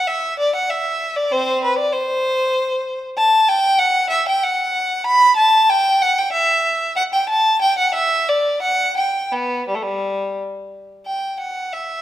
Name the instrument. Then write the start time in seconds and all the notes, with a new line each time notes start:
violin
0.07 E5
0.39 D5
0.56 F#5
0.70 E5
1.16 D5
1.32 C4 C5
1.64 B4
1.78 D5
1.93 C5
3.18 A5
3.49 G5
3.79 F#5
4.10 E5
4.28 G5
4.43 F#5
5.06 B5
5.37 A5
5.70 G5
6.02 F#5
6.19 G5
6.32 E5
6.96 F#5
7.14 G5
7.29 A5
7.62 G5
7.78 F#5
7.94 E5
8.29 D5
8.62 F#5
8.97 G5
9.31 B3
9.68 G3
9.75 A3
9.83 G3
11.06 G5
11.40 F#5
11.73 E5